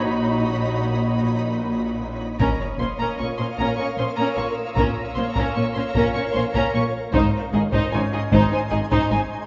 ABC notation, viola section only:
X:1
M:3/4
L:1/16
Q:1/4=76
K:Bbm
V:1 name="Viola section"
^D8- D3 z | D z D D D D D D D D D z | D z D D D D D D D D D z | E z E E E E E E E E E z |]